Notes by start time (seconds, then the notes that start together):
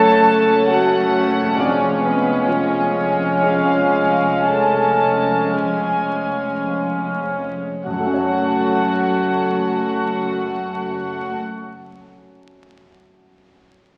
Already playing: F#1 F#2 A3 C#4 A4 C#5 F#5 A5
0.68 F#4 F#5
1.40 F2
1.45 G#3
1.49 C#4
1.54 F2 C#5 D5
1.58 F1 F2 G#3 C#4 D4 C#5 D5 F5 G#5
1.80 C#4 C#5
2.02 B3 B4
2.47 F3 C#4 C#5
3.41 G#3 C#4 F4 C#5 F5
4.45 A4 A5
5.53 G#4 G#5
7.84 F#1 F#2 A3 F#4 C#5 F#5 A5
7.91 F#3
7.98 A3
8.05 C#4
8.12 C#5